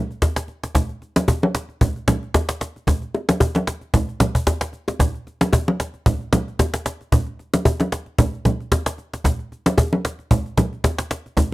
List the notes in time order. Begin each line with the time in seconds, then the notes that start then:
0.11 cajon slap
0.22 cajon bass, cajon slap, high bongo
0.36 cajon slap
0.48 cajon slap
0.63 cajon slap
0.75 cajon bass, low conga
0.89 cajon slap
1.02 cajon slap
1.16 cajon slap, low bongo
1.28 cajon bass, high bongo
1.43 low bongo
1.55 cajon slap
1.69 cajon slap
1.81 cajon bass, low conga
1.96 cajon slap
2.08 cajon slap, low bongo, low conga
2.23 cajon slap
2.34 cajon bass, cajon slap, high bongo
2.49 cajon slap
2.61 cajon slap
2.76 cajon slap
2.87 cajon bass, low conga
3.02 cajon slap
3.15 cajon slap, high bongo
3.29 cajon slap, low bongo
3.40 cajon bass, high bongo
3.55 cajon slap, low bongo
3.67 cajon slap
3.81 cajon slap
3.94 cajon bass, low conga
4.09 cajon slap
4.20 cajon slap, low bongo, low conga
4.35 cajon bass
4.47 cajon bass, cajon slap, high bongo
4.61 cajon slap
4.73 cajon slap
4.88 cajon slap, high bongo
5.00 cajon bass, low conga
5.14 cajon slap
5.27 cajon slap
5.41 cajon slap, low bongo
5.53 cajon bass, high bongo
5.68 low bongo
5.80 cajon slap
5.94 cajon slap
6.06 cajon bass, low conga
6.21 cajon slap
6.33 cajon slap, low bongo, low conga
6.48 cajon slap
6.59 cajon bass, cajon slap, high bongo
6.74 cajon slap
6.85 cajon slap
7.01 cajon slap
7.12 cajon bass, low conga
7.26 cajon slap
7.39 cajon slap
7.54 cajon slap, low bongo
7.65 cajon bass, high bongo
7.80 cajon slap, low bongo
7.92 cajon slap
8.06 cajon slap
8.18 cajon bass, low conga
8.33 cajon slap
8.45 cajon slap, low bongo, low conga
8.60 cajon slap
8.72 cajon bass, cajon slap, high bongo
8.86 cajon slap
8.98 cajon slap
9.14 cajon slap
9.24 cajon bass, low conga
9.39 cajon slap
9.52 cajon slap
9.66 cajon slap, low bongo
9.78 cajon bass, high bongo
9.93 cajon slap, low bongo
10.05 cajon slap
10.19 cajon slap
10.31 cajon bass, low conga
10.46 cajon slap
10.57 cajon slap, low bongo, low conga
10.73 cajon slap
10.84 cajon bass, cajon slap, high bongo
10.98 cajon slap
11.10 cajon slap
11.26 cajon slap
11.37 cajon bass, low conga